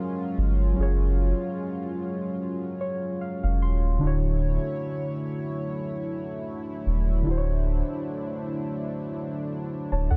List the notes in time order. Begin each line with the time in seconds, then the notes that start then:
Already playing: F#3 G#3 C#4 F4 G#4 A#4
0.38 G1
0.74 F#3 C#4
0.78 F#1 F4 G#4
0.82 C#5
2.81 C#5
3.21 F5
3.43 F1 F5
3.62 D#1 C6
3.99 D1 D3 A3 D4 E4 C#5
4.03 E4 F#4
4.07 C#5
6.86 D#1
7.22 D3 D4
7.27 D1 E4 F#4
7.31 C5
7.37 C#5
9.92 D1 C#5 A5
10.10 D2 A4 F#5